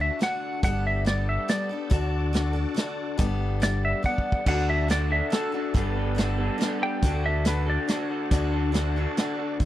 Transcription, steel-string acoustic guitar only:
0.00 0.19 A3 soft
0.00 0.20 D4 soft
0.00 0.19 F#4 medium
0.19 0.62 D3 medium
0.19 0.64 A3 medium
0.19 0.64 D4 medium
0.19 0.64 F#4 medium
0.63 1.03 G3 medium
0.63 1.06 B3 medium
0.63 1.06 D4 medium
0.63 1.08 A4 medium
1.05 1.47 G3 medium
1.05 1.49 B3 medium
1.05 1.49 D4 medium
1.05 1.51 A4 medium
1.48 1.69 G3 medium
1.48 1.70 B3 medium
1.48 1.70 D4 medium
1.48 1.68 A4 medium
1.69 1.91 B3 soft
1.69 1.89 D4 soft
1.69 1.91 A4 medium
1.90 2.32 D3 medium
1.90 2.33 D4 medium
1.90 2.33 F#4 loud
1.90 2.36 A4 loud
2.33 2.54 D3 medium
2.33 2.55 D4 medium
2.33 2.54 F#4 medium
2.33 2.52 A4 medium
2.53 2.75 D4 soft
2.53 2.76 F#4 medium
2.53 2.75 A4 medium
2.74 3.17 D3 medium
2.74 3.18 D4 medium
2.74 3.19 F#4 medium
2.74 3.19 A4 medium
3.18 3.59 G3 medium
3.18 3.61 B3 loud
3.18 3.61 D4 loud
3.18 3.63 A4 loud
3.60 4.01 G3 medium
3.60 4.04 B3 medium
3.60 4.04 D4 medium
3.60 4.05 A4 medium
4.03 4.46 G3 medium
4.03 4.47 B3 medium
4.03 4.47 D4 medium
4.03 4.48 A4 medium
4.47 4.87 D3 medium
4.47 4.89 D4 medium
4.47 4.89 F#4 medium
4.47 4.90 A4 loud
4.88 5.29 D3 medium
4.88 5.32 D4 medium
4.88 5.31 F#4 medium
4.88 5.34 A4 medium
5.30 5.52 D3 medium
5.30 5.53 D4 medium
5.30 5.53 F#4 medium
5.30 5.51 A4 medium
5.52 5.73 D4 soft
5.52 5.75 F#4 medium
5.52 5.74 A4 medium
5.74 6.14 G3 medium
5.74 6.16 B3 medium
5.74 6.16 D4 medium
5.74 6.18 A4 loud
6.15 6.57 G3 medium
6.15 6.59 B3 medium
6.15 6.59 D4 medium
6.15 6.61 A4 medium
6.58 7.02 G3 medium
6.58 7.03 B3 medium
6.58 7.03 D4 medium
6.62 7.04 A4 medium
7.03 7.44 D3 medium
7.03 7.46 D4 medium
7.03 7.47 F#4 loud
7.03 7.48 A4 medium
7.45 7.87 D3 medium
7.45 7.88 D4 medium
7.45 7.90 F#4 medium
7.45 7.91 A4 medium
7.88 8.31 D3 medium
7.88 8.32 D4 medium
7.88 8.32 F#4 medium
7.88 8.33 A4 medium
8.31 8.71 D3 loud
8.31 8.72 D4 loud
8.31 8.73 F#4 loud
8.31 8.74 A4 loud
8.72 8.94 D3 medium
8.72 8.95 D4 medium
8.72 8.95 F#4 medium
8.72 8.95 A4 medium
8.96 9.17 D4 soft
8.96 9.18 F#4 medium
8.96 9.17 A4 medium
9.17 9.60 D3 medium
9.17 9.60 D4 medium
9.17 9.61 F#4 medium
9.17 9.61 A4 medium

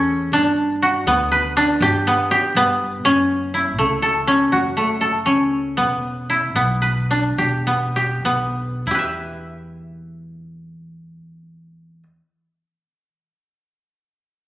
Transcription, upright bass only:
0.00 0.29 E2 medium
0.32 1.02 G1 medium
1.07 1.77 D2 medium
1.81 2.04 G1 medium
2.55 3.01 G1 medium
3.05 3.79 F#1 medium
3.79 4.49 C#2 medium
4.53 5.23 F#1 medium
5.27 5.74 C#2 medium
5.78 6.56 E1 medium
6.56 7.34 B1 medium
7.38 8.20 E1 medium
8.25 8.82 B1 medium
8.86 12.02 E2 medium

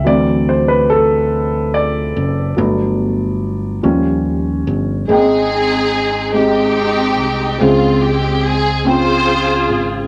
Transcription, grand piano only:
0.04 0.61 E3 soft
0.04 0.61 F#3 soft
0.04 0.61 C4 medium
0.04 0.45 D5 medium
0.49 0.70 C5 medium
0.68 0.88 B4 medium
0.90 1.76 A4 medium
1.74 3.79 D5 medium
2.57 3.79 F#3 soft
2.57 3.79 A3 soft
2.57 3.79 B3 medium
3.83 5.05 F3 soft
3.83 5.05 G3 soft
3.83 5.05 C#4 medium
5.08 6.31 G#2 soft
5.08 5.99 G#3 medium
5.08 5.16 A#3 soft
5.08 6.00 D#4 medium
5.08 6.01 G5 medium
5.16 6.03 C4 soft
6.33 7.24 G#3 medium
6.33 7.25 C4 soft
6.33 7.25 D#4 soft
6.33 7.26 G4 medium
7.58 8.82 C#3 soft
7.58 8.50 G#3 medium
7.58 8.50 C4 medium
7.58 7.67 E4 soft
7.58 8.51 C5 medium
7.67 8.54 F4 medium
8.84 9.75 C4 soft
8.84 9.76 C#4 medium
8.84 9.77 F4 soft
8.84 9.77 G5 medium

